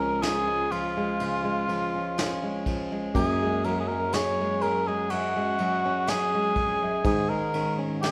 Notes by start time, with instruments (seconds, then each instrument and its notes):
Already playing: fretless electric bass C#2, steel-string acoustic guitar F3 G#3, harp G#3 C#4, cor anglais A#4
0.00 steel-string acoustic guitar C#4
0.22 steel-string acoustic guitar F4, cor anglais G#4, snare, ride
0.47 steel-string acoustic guitar G#3
0.71 steel-string acoustic guitar F3, harp F4, cor anglais F4, ride
0.97 steel-string acoustic guitar G#3
1.20 steel-string acoustic guitar C#3, ride
1.44 steel-string acoustic guitar G#3
1.68 steel-string acoustic guitar F3, ride
1.94 steel-string acoustic guitar C#4
2.18 harp C#4, steel-string acoustic guitar C#4, snare, ride
2.43 steel-string acoustic guitar G#3
2.66 steel-string acoustic guitar F3, kick, ride
2.92 steel-string acoustic guitar G#3
3.15 fretless electric bass F#2, steel-string acoustic guitar F#2, harp A#3, cor anglais G#4, kick, ride
3.42 steel-string acoustic guitar G#3
3.64 steel-string acoustic guitar F#3, harp C#4, cor anglais A#4, ride
3.80 cor anglais G#4
3.88 steel-string acoustic guitar C#4, cor anglais A#4
4.12 steel-string acoustic guitar G#4, cor anglais C#5, snare, ride
4.41 steel-string acoustic guitar G#3
4.61 steel-string acoustic guitar F#3, harp G#4, cor anglais A#4, ride
4.87 steel-string acoustic guitar G#3, cor anglais G#4
5.10 steel-string acoustic guitar F#2, cor anglais F#4, ride
5.36 steel-string acoustic guitar G#3
5.58 steel-string acoustic guitar F#3, ride
5.85 steel-string acoustic guitar C#4
6.07 harp C#4, steel-string acoustic guitar C#4, cor anglais G#4, snare, ride
6.34 steel-string acoustic guitar G#3
6.56 steel-string acoustic guitar F2, kick, ride
6.82 steel-string acoustic guitar F#2
7.04 fretless electric bass G#2, steel-string acoustic guitar G#2, harp D#3, cor anglais G#4, kick, ride
7.29 steel-string acoustic guitar G#3, cor anglais A#4
7.54 steel-string acoustic guitar D#3, harp C#4, ride
7.78 steel-string acoustic guitar C#4
8.02 steel-string acoustic guitar C#4, cor anglais G#4, snare, ride